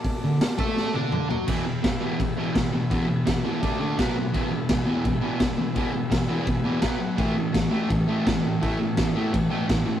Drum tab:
CC |--------|x-x-x-x-|x-x-x-x-|x-x-x-x-|
HH |o-o-----|--------|--------|--------|
SD |--o-o---|--o---o-|--o---o-|--o---o-|
T1 |-----o--|--------|--------|--------|
T2 |------o-|--------|--------|--------|
FT |-------o|--------|--------|--------|
BD |o--o----|o-o-o-o-|o-o-o-o-|o-o-o-o-|

CC |x-x-x-x-|x-x-x-x-|x-x-x-x-|
HH |--------|--------|--------|
SD |--o---o-|--o---o-|--o---o-|
T1 |--------|--------|--------|
T2 |--------|--------|--------|
FT |--------|--------|--------|
BD |o-o-o-o-|o-o-o-o-|o-o-o-o-|